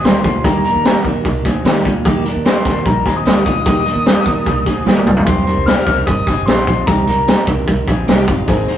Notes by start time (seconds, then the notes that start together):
0.04 D2 D#3 G3 A#3 D#4 G4 C6, snare, closed hi-hat
0.24 D2 G#3 A#3 D#4 F4 G4 C6, kick, closed hi-hat
0.44 D#2 D#3 G3 A#3 D#4 G4 A#5, kick, closed hi-hat
0.64 A#3 D4 D#4 G4 A#4 A#5, closed hi-hat
0.75 D#2
0.85 D#3 G3 A#3 D#4 G4, snare, closed hi-hat
1.04 D#2 A#3 D4 D#4 G4 A#4, kick, closed hi-hat
1.25 C2 G3 A#3 D#4 G4, kick, closed hi-hat
1.45 D2 A#3 C4 D#4 G4 G#4, kick, closed hi-hat
1.64 D#2 D#3 G3 A#3 D#4 G4, snare, closed hi-hat
1.84 D2 G#3 A#3 D#4 F4 G4, kick, closed hi-hat
2.04 D#2 D#3 G3 A#3 D#4 G4, kick, closed hi-hat
2.23 A#3 D4 D#4 G4 A#4, closed hi-hat
2.36 D#2
2.44 D#3 G3 A#3 D#4 G4 C6, snare, closed hi-hat
2.64 D#2 A#3 D4 D#4 G4 A#4, kick, snare, closed hi-hat
2.85 A#1 G3 A#3 D#4 G4 A#5, kick, closed hi-hat
3.04 D#2 A#3 C4 D#4 G4 G#4, kick, closed hi-hat
3.16 D#6
3.25 D2 D#3 G3 A#3 D#4 G4, snare, closed hi-hat
3.45 D2 G#3 A#3 D#4 F4 G4 D#6, kick, closed hi-hat
3.65 D#2 D#3 G3 A#3 D#4 G4, kick, closed hi-hat
3.85 A#3 D4 D#4 G4 A#4, closed hi-hat
3.96 D#2
4.05 D#3 G3 A#3 D#4 G4, snare, closed hi-hat
4.25 D#2 A#3 D4 D#4 G4 A#4, kick, closed hi-hat
4.45 C2 G3 A#3 D#4 G4, kick, closed hi-hat
4.64 D2 A#3 C4 D#4 G4 G#4, kick, closed hi-hat
4.85 D#2 D#3 G3 A#3 D#4 G4, snare
4.97 high tom
5.05 C2 C4 D#4 F4 G4, mid tom
5.17 floor tom
5.25 C3 G3 C4 D#4 G4 C5 C6, kick, closed hi-hat
5.45 C4 D4 D#4 G4 A#4, closed hi-hat
5.57 C2
5.66 C3 G3 C4 D#4 G4 F6, snare, closed hi-hat
5.86 C2 C4 D4 D#4 G4 A#4, kick, snare, closed hi-hat
6.06 G1 G3 C4 D#4 G4 D#6, kick, closed hi-hat
6.26 F1 C4 D#4 G4 G#4, kick, closed hi-hat
6.46 A#1 C3 G3 C4 D#4 G4 C6, snare, closed hi-hat
6.66 A#1 G#3 C4 D#4 F4 G4, kick, closed hi-hat
6.87 C2 C3 G3 C4 D#4 G4 A#5, kick, closed hi-hat
7.07 C2 C4 D4 D#4 G4 A#4 A#5, closed hi-hat
7.27 C3 G3 C4 D#4 G4, snare, closed hi-hat
7.47 C2 C4 D4 D#4 G4 A#4, kick, closed hi-hat
7.67 C2 G3 C4 D#4 G4, kick, closed hi-hat
7.88 A#1 C4 D#4 G4 G#4, kick, closed hi-hat
8.07 C2 C3 G3 C4 D#4 G4, snare, closed hi-hat
8.27 G1 G#3 C4 D#4 F4 G4, kick, closed hi-hat
8.46 G#1 G#3 C4 D#4 G#4 A#4, kick, closed hi-hat
8.67 C4 D#4 A#4 C5, closed hi-hat